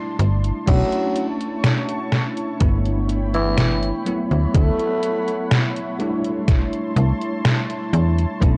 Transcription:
0.00 0.57 G3 medium
0.00 0.58 A3 medium
0.00 0.58 D4 medium
0.00 0.59 E4 loud
0.00 0.64 E4 medium
0.00 0.64 D5 medium
0.00 0.65 A5 medium
0.00 0.65 C6 medium
0.19 0.52 G1 loud
0.19 closed hi-hat medium
0.44 closed hi-hat medium
0.66 0.84 B1 loud
0.66 1.26 F#3 medium
0.66 2.51 A3 medium
0.66 2.51 C#4 medium
0.66 2.52 D4 medium
0.66 8.57 E4 medium
0.66 2.52 E4 medium
0.66 8.38 C#5 medium
0.66 2.59 A5 medium
0.66 2.59 C#6 medium
0.66 kick loud
0.66 closed hi-hat medium
0.66 crash loud
0.92 closed hi-hat soft
1.16 closed hi-hat medium
1.41 closed hi-hat soft
1.64 snare loud
1.64 closed hi-hat loud
1.89 closed hi-hat soft
2.12 snare medium
2.12 closed hi-hat soft
2.37 closed hi-hat soft
2.60 3.92 G1 loud
2.60 3.96 A3 medium
2.60 3.97 B3 medium
2.60 3.97 D4 medium
2.60 3.98 E4 medium
2.60 4.05 G5 medium
2.60 4.05 B5 medium
2.60 kick loud
2.60 closed hi-hat medium
2.86 closed hi-hat soft
3.09 closed hi-hat medium
3.34 3.92 E3 medium
3.34 closed hi-hat soft
3.58 snare loud
3.58 closed hi-hat loud
3.83 closed hi-hat soft
4.05 5.90 F#3 medium
4.05 5.90 A3 medium
4.05 5.91 B3 medium
4.05 5.91 E4 medium
4.05 5.98 F#5 medium
4.05 5.98 B5 medium
4.05 closed hi-hat medium
4.31 4.47 D2 medium
4.31 closed hi-hat soft
4.54 4.71 D2 loud
4.54 5.51 A3 medium
4.54 kick loud
4.54 closed hi-hat loud
4.79 closed hi-hat soft
5.03 closed hi-hat medium
5.28 closed hi-hat soft
5.51 snare loud
5.51 closed hi-hat loud
5.76 closed hi-hat soft
5.99 8.32 G3 medium
5.99 8.32 A3 medium
5.99 8.33 D4 medium
5.99 8.33 E4 loud
5.99 8.57 A5 medium
5.99 8.39 C6 medium
5.99 closed hi-hat soft
6.24 closed hi-hat soft
6.48 kick loud
6.48 snare medium
6.48 closed hi-hat loud
6.73 closed hi-hat soft
6.96 7.13 C2 loud
6.96 closed hi-hat medium
7.22 closed hi-hat soft
7.45 snare loud
7.45 closed hi-hat loud
7.70 closed hi-hat soft
7.93 8.26 E2 loud
7.93 closed hi-hat medium
8.18 closed hi-hat soft
8.40 8.57 B1 loud
8.40 8.57 A3 medium
8.40 8.57 C#4 medium
8.40 8.57 D4 medium
8.40 8.57 E4 medium
8.40 8.57 C#6 medium
8.40 kick loud
8.40 closed hi-hat medium

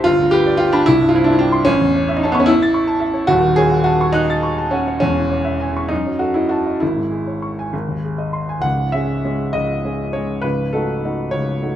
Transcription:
0.04 0.84 G1 medium
0.04 0.32 F4 loud
0.19 0.41 D2 medium
0.31 0.59 G4 loud
0.31 0.55 B4 medium
0.46 0.68 D5 medium
0.57 0.72 F4 loud
0.57 0.81 G5 medium
0.73 0.86 D4 loud
0.73 0.87 B5 medium
0.86 1.66 C2 medium
0.86 1.07 E4 loud
1.01 1.22 G2 medium
1.09 1.16 F4 medium
1.14 1.24 E4 medium
1.14 1.36 C5 medium
1.24 1.33 D4 loud
1.24 1.48 E5 medium
1.33 1.41 E4 medium
1.39 1.67 D4 loud
1.39 1.62 G5 medium
1.52 1.67 C6 medium
1.65 3.26 A1 medium
1.65 2.14 C#4 loud
1.81 2.03 E2 medium
1.95 2.17 C#5 medium
2.09 2.30 E5 medium
2.17 2.25 D#4 medium
2.23 2.33 C#4 medium
2.23 2.44 A5 medium
2.32 2.41 B3 loud
2.32 2.57 C#6 medium
2.40 2.49 C#4 loud
2.46 3.29 E4 loud
2.46 2.70 E6 medium
2.62 2.84 A6 medium
2.74 2.97 C#6 medium
2.87 3.10 A5 medium
3.00 3.24 E5 medium
3.14 3.29 C#5 medium
3.27 4.97 D#1 medium
3.27 4.97 D#2 medium
3.27 3.57 F#4 loud
3.44 3.68 D#3 medium
3.56 3.87 G#4 loud
3.56 3.82 C#5 medium
3.72 3.96 F#5 medium
3.84 4.15 F#4 loud
3.84 4.10 A5 medium
4.01 4.24 C#6 medium
4.13 4.71 D#4 loud
4.13 4.38 F#6 medium
4.30 4.53 A6 medium
4.43 4.67 C#6 medium
4.58 4.82 A5 medium
4.71 4.99 C#4 medium
4.71 4.96 F#5 medium
4.88 5.02 C#5 medium
5.00 5.87 E1 medium
5.00 5.88 E2 medium
5.00 5.89 C#4 loud
5.16 5.39 E3 medium
5.31 5.54 C#5 soft
5.45 5.69 E5 medium
5.60 5.84 G#5 medium
5.77 5.91 C#6 medium
5.89 6.78 F#2 medium
5.89 6.20 D#4 medium
6.07 6.30 F#3 soft
6.19 6.35 F#4 medium
6.19 6.45 A4 soft
6.34 6.50 E4 medium
6.34 6.60 D#5 soft
6.49 6.80 F#4 medium
6.49 6.75 A5 soft
6.66 6.81 D#5 soft
6.80 7.71 G#1 medium
6.80 7.72 E4 medium
6.96 7.21 G#2 soft
7.11 7.36 G#4 soft
7.27 7.52 C#5 soft
7.42 7.67 C#6 soft
7.59 7.74 G#5 soft
7.73 8.61 G#1 medium
7.88 8.13 D#2 soft
8.04 8.28 G#4 soft
8.18 8.43 D#5 soft
8.33 8.57 C6 soft
8.49 8.64 G#5 soft
8.59 8.90 C#1 medium
8.59 8.92 C#2 medium
8.59 8.92 F#5 loud
8.92 9.21 G#3 soft
8.92 9.21 C#4 soft
8.92 9.21 G#4 soft
8.92 9.54 E5 medium
9.25 9.52 G#3 soft
9.25 9.52 C#4 soft
9.25 9.52 G#4 soft
9.53 9.84 C#1 medium
9.53 9.84 C#2 medium
9.53 10.13 D#5 medium
9.85 10.11 G#3 soft
9.85 10.11 C#4 soft
9.85 10.12 G#4 soft
10.13 10.41 G#3 soft
10.13 10.41 C#4 soft
10.13 10.41 G#4 soft
10.13 10.43 C#5 medium
10.42 10.72 C#1 medium
10.42 10.72 C#2 medium
10.42 10.72 B4 medium
10.73 11.00 A3 soft
10.73 11.00 D#4 soft
10.73 11.00 F#4 soft
10.73 11.31 A4 medium
11.05 11.30 A3 soft
11.05 11.30 D#4 soft
11.05 11.30 F#4 soft
11.31 11.61 C#1 soft
11.31 11.61 C#2 medium
11.31 11.76 C#5 medium
11.62 11.76 A3 soft
11.62 11.76 D#4 soft
11.62 11.76 F#4 soft

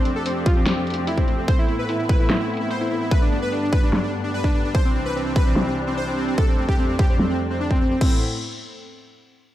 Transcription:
0.00 1.47 F2 medium
0.00 1.47 F3 medium
0.00 4.71 A3 medium
0.00 1.45 D4 medium
0.00 1.47 G4 medium
0.05 0.12 C4 medium
0.05 closed hi-hat soft
0.16 0.22 A4 loud
0.26 0.33 C4 medium
0.26 closed hi-hat medium
0.36 0.43 C4 medium
0.46 0.53 F4 medium
0.46 kick loud
0.46 closed hi-hat soft
0.57 0.63 C4 medium
0.66 0.73 C4 medium
0.66 snare loud
0.66 closed hi-hat medium
0.77 0.84 C4 medium
0.87 closed hi-hat soft
0.90 closed hi-hat medium
0.94 1.04 C4 medium
0.94 closed hi-hat medium
1.07 1.14 E4 medium
1.07 closed hi-hat medium
1.18 1.24 C4 medium
1.18 kick medium
1.18 closed hi-hat soft
1.28 1.35 C4 medium
1.28 closed hi-hat medium
1.38 1.45 C4 medium
1.48 3.10 A2 medium
1.48 4.71 B3 medium
1.48 3.10 C4 medium
1.48 3.10 E4 medium
1.48 1.55 C5 loud
1.48 kick loud
1.48 closed hi-hat medium
1.59 1.65 E4 medium
1.69 1.75 E4 medium
1.69 closed hi-hat soft
1.79 1.85 B4 medium
1.89 1.96 E4 medium
1.89 closed hi-hat medium
1.99 2.06 E4 medium
2.09 2.16 B4 medium
2.09 kick loud
2.09 closed hi-hat medium
2.20 2.26 E4 medium
2.30 2.36 E4 medium
2.30 snare loud
2.30 closed hi-hat medium
2.40 2.47 E4 medium
2.50 closed hi-hat soft
2.54 closed hi-hat medium
2.57 2.67 E4 medium
2.57 closed hi-hat medium
2.70 2.77 C5 medium
2.70 closed hi-hat medium
2.81 2.87 E4 medium
2.81 closed hi-hat soft
2.91 2.98 E4 medium
2.91 closed hi-hat soft
3.01 3.08 E4 medium
3.11 4.73 G2 medium
3.11 7.97 G3 medium
3.11 7.97 D4 medium
3.11 3.18 B4 loud
3.11 kick loud
3.11 closed hi-hat medium
3.22 3.28 D4 medium
3.32 3.39 D4 medium
3.32 closed hi-hat soft
3.42 3.49 B4 loud
3.52 3.59 D4 medium
3.52 closed hi-hat medium
3.62 3.69 D4 medium
3.73 3.79 B4 medium
3.73 kick loud
3.73 closed hi-hat medium
3.83 3.90 D4 medium
3.93 4.00 D4 medium
3.93 snare loud
3.93 closed hi-hat medium
4.04 4.10 D4 medium
4.13 closed hi-hat soft
4.17 closed hi-hat medium
4.20 4.30 D4 medium
4.20 closed hi-hat medium
4.34 4.41 B4 medium
4.34 closed hi-hat medium
4.44 4.51 D4 medium
4.44 kick medium
4.54 4.61 D4 medium
4.54 closed hi-hat soft
4.65 4.71 D4 medium
4.75 6.36 C2 medium
4.75 7.98 C3 medium
4.75 6.36 E3 medium
4.75 4.81 C5 loud
4.75 kick loud
4.75 closed hi-hat medium
4.85 4.92 C4 medium
4.95 5.02 C4 medium
4.95 closed hi-hat medium
5.05 5.12 B4 medium
5.15 5.22 C4 medium
5.15 closed hi-hat medium
5.26 5.32 C4 medium
5.36 5.43 B4 medium
5.36 kick loud
5.46 5.53 C4 medium
5.56 5.63 C4 medium
5.56 snare loud
5.56 closed hi-hat medium
5.67 5.73 C4 medium
5.77 closed hi-hat soft
5.80 closed hi-hat medium
5.83 5.94 C4 medium
5.83 closed hi-hat medium
5.97 6.04 C5 medium
5.97 closed hi-hat medium
6.07 6.14 C4 medium
6.07 closed hi-hat soft
6.18 6.24 C4 medium
6.18 closed hi-hat medium
6.28 6.34 C4 medium
6.38 8.00 F2 medium
6.38 8.00 A3 medium
6.38 6.45 A4 loud
6.38 kick loud
6.38 closed hi-hat medium
6.48 6.55 C4 medium
6.58 6.65 C4 medium
6.69 6.75 G4 loud
6.69 kick medium
6.79 6.86 C4 medium
6.79 closed hi-hat medium
6.89 6.96 C4 medium
6.99 7.06 G4 medium
6.99 kick loud
7.10 7.16 C4 medium
7.20 7.26 C4 medium
7.20 snare loud
7.20 closed hi-hat medium
7.30 7.37 C4 medium
7.40 closed hi-hat soft
7.43 closed hi-hat medium
7.47 7.57 C4 medium
7.47 closed hi-hat medium
7.60 7.67 D4 medium
7.60 closed hi-hat medium
7.71 7.77 C4 medium
7.71 kick medium
7.81 7.88 C4 medium
7.81 closed hi-hat medium
7.91 7.98 C4 medium
8.01 8.20 A2 medium
8.01 8.20 A3 medium
8.01 8.20 B3 medium
8.01 8.16 C4 medium
8.01 8.20 C4 medium
8.01 8.20 E4 medium
8.01 kick loud
8.01 crash medium

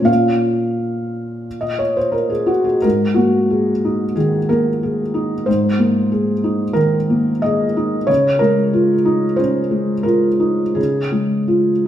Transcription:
0.00 2.77 A#2 soft
0.00 0.10 F3 soft
0.00 0.03 A#3 soft
0.00 2.78 A#3 soft
0.00 0.04 C#4 soft
0.00 0.05 F4 soft
0.00 0.11 C5 medium
0.00 0.10 C#5 medium
0.04 2.78 C#4 soft
0.04 2.79 F4 soft
0.04 1.62 F5 medium
1.61 1.79 D#5 medium
1.79 1.97 C#5 medium
1.97 2.14 C5 medium
2.12 2.31 A#4 medium
2.30 2.48 G#4 soft
2.46 2.65 F#4 medium
2.64 2.83 G#4 medium
2.82 4.13 G#2 soft
2.82 3.17 A#4 medium
3.14 3.70 A#3 soft
3.14 4.15 F#4 medium
3.50 4.03 G#4 soft
3.84 4.37 D#4 soft
4.16 4.70 D#3 soft
4.16 4.49 G#4 medium
4.49 5.02 A#3 soft
4.49 5.47 A#4 medium
4.83 5.34 G#4 soft
5.14 5.66 D#4 soft
5.46 6.73 G#2 soft
5.46 6.76 C5 medium
5.79 6.31 A#3 soft
6.12 6.63 G#4 soft
6.44 6.96 D#4 soft
6.73 7.30 D#3 soft
6.73 7.43 A#4 medium
7.10 7.64 A#3 soft
7.42 7.96 G#4 soft
7.42 8.07 D#5 medium
7.77 8.08 D#4 soft
8.07 9.34 C#3 soft
8.07 8.39 C#5 medium
8.39 8.92 G#3 soft
8.39 9.38 A#4 medium
8.73 9.25 F4 soft
9.05 9.58 D#4 soft
9.36 9.92 C#4 soft
9.36 10.05 C5 medium
9.71 10.27 G#3 soft
10.03 10.62 F4 soft
10.03 10.76 A#4 medium
10.40 10.98 D#4 soft
10.75 11.87 C#3 soft
10.75 11.87 G#4 medium
11.12 11.70 G#3 soft
11.48 11.87 F4 soft

